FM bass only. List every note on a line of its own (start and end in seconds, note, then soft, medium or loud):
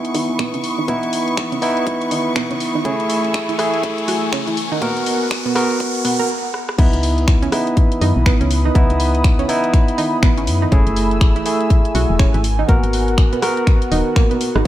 0.15 0.25 F#2 loud
0.29 0.45 B1 medium
0.54 0.84 C#2 loud
0.88 0.99 C#2 loud
1.03 1.58 C#2 medium
2.60 2.79 F#2 loud
2.85 2.96 F#1 loud
3.00 3.54 F#1 medium
4.08 4.19 B1 loud
4.23 4.39 E1 medium
6.79 6.89 C#2 loud
6.93 7.48 C#2 medium
8.02 8.12 F#2 loud
8.16 8.32 B1 medium
8.41 8.71 C#2 loud
8.75 8.86 C#2 loud
8.90 9.44 C#2 medium
10.23 10.49 G#1 medium
10.47 10.66 F#2 loud
10.72 10.82 F#1 loud
10.87 11.41 F#1 medium
11.95 12.05 B1 loud
12.10 12.26 E1 medium
12.34 12.64 G#1 loud
12.69 12.79 G#1 loud
12.83 13.38 G#1 medium
13.92 14.02 D#1 medium
14.56 14.63 G#1 medium